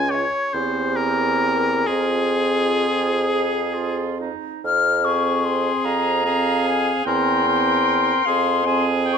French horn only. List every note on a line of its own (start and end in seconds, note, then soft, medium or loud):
0.00 0.28 C#4 medium
0.54 1.84 C4 medium
1.88 4.29 C4 medium
5.03 6.22 C4 medium
6.25 7.05 C4 medium
7.06 7.46 C4 medium
7.46 8.25 C4 medium
8.27 8.65 C4 medium
8.66 9.18 C4 medium